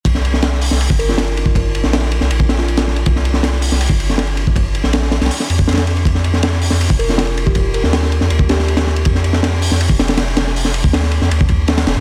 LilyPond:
<<
  \new Staff \with { instrumentName = "Kalimba" } { \time 4/4 \key c \minor \tempo 4 = 160 r2 r8 bes'16 f'8 r16 ees'8 | r8. ees'8. r4 r16 f'8. r8 | r1 | r1 |
r2 r8 bes'16 f'8 r8 g'16~ | g'16 r16 bes'8 r4. g'4 r8 | r1 | r1 | }
  \new Staff \with { instrumentName = "Sub bass" } { \clef bass \time 4/4 \key c \minor c,4.~ c,16 c,8 g,,4.~ g,,16~ | g,,8. bes,,4 c,16 bes,,2 | c,4.~ c,16 c,8 g,,4.~ g,,16~ | g,,8. bes,,4 c,16 r8 f,4. |
f,4.~ f,16 f,8 f,,4.~ f,,16~ | f,,8. ees,4 f,16 ees,2 | f,4.~ f,16 f,8 f,,4.~ f,,16~ | f,,8. ees,4 f,16 ees,4. f,,16 aes,16 | }
  \new DrumStaff \with { instrumentName = "Drums" } \drummode { \time 4/4 <bd cymr>16 sn16 cymr16 sn16 <cymr sn>16 sn16 hho16 sn16 cymr16 bd16 cymr16 sn16 <cymr sn>16 cymr16 cymr16 bd16 | <bd cymr>8 cymr16 sn16 <cymr sn>16 sn16 cymr16 sn16 cymr16 bd16 <cymr sn>16 sn16 cymr16 <cymr sn>16 sn16 cymr16 | <bd cymr>16 sn16 cymr16 sn16 <cymr sn>16 sn16 hho16 sn16 cymr16 bd16 cymr16 sn16 <cymr sn>16 cymr16 cymr16 bd16 | <bd cymr>8 cymr16 sn16 <cymr sn>16 sn16 <cymr sn>16 <cymr sn>32 <cymr sn>32 hho16 sn16 cymr16 bd16 <cymr sn>32 <cymr sn>32 <cymr sn>16 cymr16 cymr16 |
<bd cymr>16 sn16 cymr16 sn16 <cymr sn>16 sn16 hho16 sn16 cymr16 bd16 cymr16 sn16 <cymr sn>16 cymr16 cymr16 bd16 | <bd cymr>8 cymr16 sn16 <cymr sn>16 sn16 cymr16 sn16 cymr16 bd16 <cymr sn>16 sn16 cymr16 <cymr sn>16 sn16 cymr16 | <bd cymr>16 sn16 cymr16 sn16 <cymr sn>16 sn16 hho16 sn16 cymr16 bd16 <cymr sn>16 <cymr sn>16 <cymr sn>16 cymr16 <cymr sn>16 sn16 | hho16 sn16 cymr16 bd16 <cymr sn>16 sn16 cymr16 sn16 cymr16 bd16 <bd cymr>8 <cymr sn>16 <cymr sn>16 <cymr sn>16 sn16 | }
>>